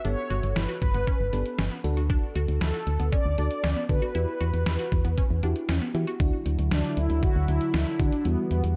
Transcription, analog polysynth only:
0, 0, Header, 1, 2, 480
1, 0, Start_track
1, 0, Tempo, 512821
1, 44, Time_signature, 4, 2, 24, 8
1, 8203, End_track
2, 0, Start_track
2, 0, Title_t, "Analog polysynth"
2, 0, Program_c, 0, 90
2, 50, Note_on_c, 0, 73, 102
2, 526, Note_on_c, 0, 71, 88
2, 541, Note_off_c, 0, 73, 0
2, 756, Note_off_c, 0, 71, 0
2, 767, Note_on_c, 0, 71, 85
2, 1688, Note_off_c, 0, 71, 0
2, 2445, Note_on_c, 0, 69, 93
2, 2924, Note_on_c, 0, 74, 108
2, 2939, Note_off_c, 0, 69, 0
2, 3643, Note_on_c, 0, 71, 92
2, 3666, Note_off_c, 0, 74, 0
2, 5286, Note_off_c, 0, 71, 0
2, 6285, Note_on_c, 0, 62, 98
2, 6526, Note_on_c, 0, 64, 103
2, 6531, Note_off_c, 0, 62, 0
2, 6767, Note_on_c, 0, 66, 106
2, 6772, Note_off_c, 0, 64, 0
2, 7006, Note_on_c, 0, 64, 106
2, 7013, Note_off_c, 0, 66, 0
2, 7488, Note_on_c, 0, 62, 91
2, 7499, Note_off_c, 0, 64, 0
2, 7728, Note_on_c, 0, 59, 99
2, 7733, Note_off_c, 0, 62, 0
2, 7959, Note_off_c, 0, 59, 0
2, 7970, Note_on_c, 0, 59, 91
2, 8076, Note_off_c, 0, 59, 0
2, 8203, End_track
0, 0, End_of_file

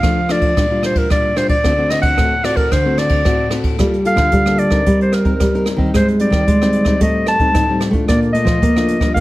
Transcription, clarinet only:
0, 0, Header, 1, 2, 480
1, 0, Start_track
1, 0, Key_signature, -2, "minor"
1, 0, Tempo, 537153
1, 1472, Time_signature, 4, 2, 24, 8
1, 8224, End_track
2, 0, Start_track
2, 0, Title_t, "Clarinet"
2, 0, Program_c, 0, 71
2, 0, Note_on_c, 0, 77, 80
2, 281, Note_on_c, 0, 74, 75
2, 294, Note_off_c, 0, 77, 0
2, 756, Note_off_c, 0, 74, 0
2, 762, Note_on_c, 0, 72, 67
2, 875, Note_on_c, 0, 70, 64
2, 889, Note_off_c, 0, 72, 0
2, 993, Note_off_c, 0, 70, 0
2, 997, Note_on_c, 0, 74, 73
2, 1228, Note_on_c, 0, 72, 73
2, 1241, Note_off_c, 0, 74, 0
2, 1327, Note_off_c, 0, 72, 0
2, 1333, Note_on_c, 0, 74, 82
2, 1705, Note_on_c, 0, 75, 87
2, 1718, Note_off_c, 0, 74, 0
2, 1799, Note_off_c, 0, 75, 0
2, 1805, Note_on_c, 0, 78, 81
2, 2187, Note_on_c, 0, 74, 84
2, 2200, Note_off_c, 0, 78, 0
2, 2294, Note_on_c, 0, 70, 76
2, 2307, Note_off_c, 0, 74, 0
2, 2432, Note_on_c, 0, 72, 69
2, 2446, Note_off_c, 0, 70, 0
2, 2670, Note_on_c, 0, 74, 77
2, 2683, Note_off_c, 0, 72, 0
2, 3152, Note_off_c, 0, 74, 0
2, 3636, Note_on_c, 0, 77, 94
2, 4101, Note_on_c, 0, 74, 80
2, 4114, Note_off_c, 0, 77, 0
2, 4467, Note_off_c, 0, 74, 0
2, 4487, Note_on_c, 0, 72, 70
2, 4591, Note_on_c, 0, 70, 63
2, 4605, Note_off_c, 0, 72, 0
2, 5072, Note_off_c, 0, 70, 0
2, 5325, Note_on_c, 0, 72, 73
2, 5430, Note_off_c, 0, 72, 0
2, 5549, Note_on_c, 0, 74, 72
2, 6234, Note_off_c, 0, 74, 0
2, 6275, Note_on_c, 0, 75, 72
2, 6496, Note_off_c, 0, 75, 0
2, 6510, Note_on_c, 0, 81, 80
2, 6956, Note_off_c, 0, 81, 0
2, 7226, Note_on_c, 0, 74, 66
2, 7335, Note_off_c, 0, 74, 0
2, 7441, Note_on_c, 0, 75, 77
2, 8136, Note_off_c, 0, 75, 0
2, 8172, Note_on_c, 0, 77, 77
2, 8224, Note_off_c, 0, 77, 0
2, 8224, End_track
0, 0, End_of_file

